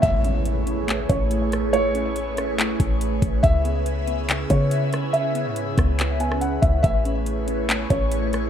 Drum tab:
HH |x-x-x-x-x-x-x-x-|x-x-x-x-x-x-x-x-|x-x-x-x-x-x-x-x-|x-x-x-x-x-x-x-x-|
CP |--------x-------|--------x-------|--------x-------|--------x-------|
SD |--------------r-|------r---------|--------------r-|------r----r----|
BD |o---------o-----|----------o---o-|o---------o-----|------o-------o-|

HH |x-x-x-x-x-x-x-x-|
CP |--------x-------|
SD |--------------r-|
BD |o---------o-----|